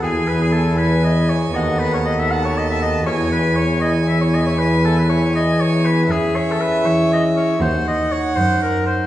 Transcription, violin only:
X:1
M:12/8
L:1/8
Q:3/8=79
K:E
V:1 name="Violin"
g3 g3 f3 a3 | g3 g6 g3 | [K:C#m] e6 f6 |]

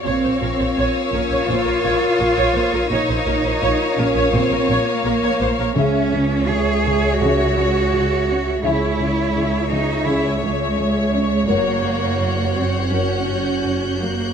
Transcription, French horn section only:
X:1
M:4/4
L:1/8
Q:1/4=84
K:Bbmix
V:1 name="French horn section"
[FB]8 | [FB]8 | [^G=e] z3 [Ge] z3 | [^G=e] z3 [Ge] z3 |
[^A^c] z3 [Ac] z3 |]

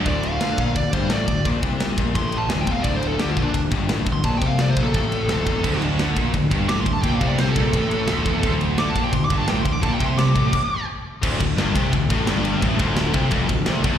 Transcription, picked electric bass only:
X:1
M:4/4
L:1/8
Q:1/4=172
K:Dm
V:1 name="Picked electric bass" clef=bass
D,,,2 D,, B,,, D,,, G,,, A,,, D,,, | B,,, C,,2 B,,, A,,,2 D,,, E,,, | D,,,2 D,, B,,, D,,, G,,, A,,, D,,, | B,,, C,,2 B,,, A,,,2 D,,, E,,, |
D,,,2 D,, B,,, D,,, G,,, A,,, D,,, | B,,, C,,2 B,,, A,,,2 D,,, E,,, | D,,,2 D,, B,,, D,,, G,,, A,,, D,,, | B,,, C,,2 A,,, z4 |
D,,, D,,, G,,, C,, D,,, A,,, G,,,2 | A,,, D,,,2 C,, F,,, D,,, C,, E,,, |]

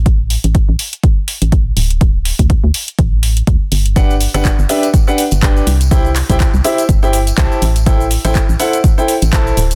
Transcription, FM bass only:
X:1
M:4/4
L:1/16
Q:"Swing 16ths" 1/4=123
K:Ador
V:1 name="FM bass" clef=bass
A,,,3 A,,, z A,,, z4 z A,,,3 D,,,2- | D,,,3 D,, z D,, z2 A,,,4 D,, z G,,,2- | G,,,3 G,,, z G,,, z4 z G,,,3 C,,2- | C,,3 C,, z C,, z2 G,,,4 C,, z A,,,2- |
A,,,3 A,,, z A,,, z4 z A,,,3 D,,,2 |]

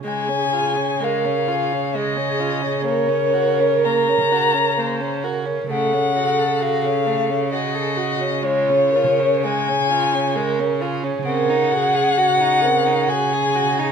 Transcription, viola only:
X:1
M:3/4
L:1/8
Q:1/4=66
K:Db
V:1 name="Viola"
A2 B A A2 | B4 c B | =A A3 _A G | F B A F B A |
B A G B A2 |]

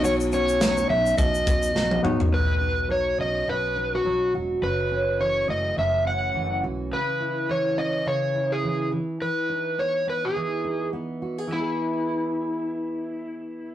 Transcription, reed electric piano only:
X:1
M:4/4
L:1/16
Q:"Swing 16ths" 1/4=105
K:E
V:1 name="Reed electric piano"
[B,DFc]4- [B,DFc] z8 z [B,DFc]2 | z16 | z16 | z16 |
z16 | z16 |]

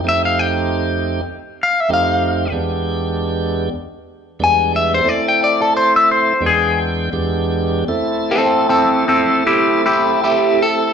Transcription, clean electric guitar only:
X:1
M:4/4
L:1/16
Q:"Swing 16ths" 1/4=91
K:Am
V:1 name="Clean electric guitar"
e f g8 f e f4 | z12 ^g2 e c | d g d A c e c2 ^G2 z6 | z2 [CA]2 [CA]2 [CA]2 [EG]2 [EG]2 [EG]2 A2 |]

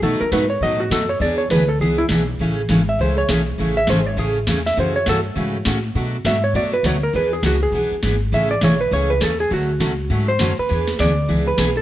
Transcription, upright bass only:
X:1
M:4/4
L:1/8
Q:"Swing" 1/4=203
K:A
V:1 name="Upright bass" clef=bass
B,, z G,,2 A,,2 F,,2 | E,,2 D,,2 C,,2 B,,,2 | A,,,2 G,,,2 C,,2 B,,,2 | A,,,2 G,,,2 A,,,2 E,,2 |
F,,2 =G,,2 ^G,,2 A,,2 | B,,2 G,,2 F,,2 D,,2 | E,,2 C,,2 B,,, z G,,,2 | A,,,2 B,,,2 C,,2 E,,2 |
D,,2 C,,2 G,,2 F,, z | E,,2 D,,2 C,,2 B,,,2 |]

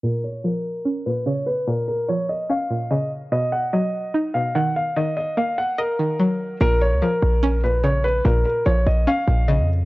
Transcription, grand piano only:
X:1
M:4/4
L:1/8
Q:1/4=146
K:Bbphr
V:1 name="Grand piano"
B d B3 c d c | B B d e f2 e z | ^d ^f d3 =f ^f =f | e e f g B4 |
B d B3 c d c | B B d e f2 e z |]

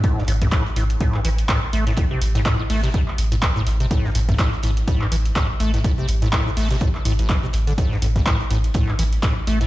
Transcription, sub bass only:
X:1
M:4/4
L:1/8
Q:"Swing 16ths" 1/4=124
K:Am
V:1 name="Sub bass" clef=bass
z A,,, z A,,, z A,,, z A,,, | z A,,, z A,,, z A,,, z A,,, | z A,,, z A,,, z A,,, z A,,, | z A,,, z A,,, z A,,, z A,,, |
z A,,, z A,,, z A,,, z A,,, |]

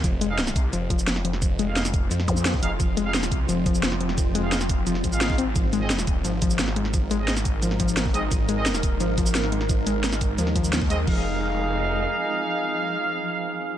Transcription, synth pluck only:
X:1
M:4/4
L:1/8
Q:1/4=174
K:Fm
V:1 name="Synth pluck" clef=bass
F, A, z2 F, F, F, F, | F, A, z2 F, F, F, F, | F, A, z2 F, F, F, F, | F, A, z2 F, F, F C |
F, A, z2 F, F, F, A, | F, A, z2 F, F, F, A, | F, A, z2 F, F, F, A, | F, A, z2 F, F, F, A, |
F, z6 z | z8 |]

